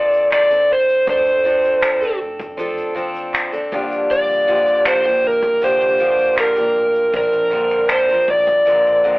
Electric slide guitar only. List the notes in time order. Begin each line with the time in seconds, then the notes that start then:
Already playing: D5
0.34 D5
0.72 C5
1.10 C5
4.11 D5
4.88 C5
5.27 A#4
5.64 C5
6.40 A#4
7.17 A#4
7.92 C5
8.30 D5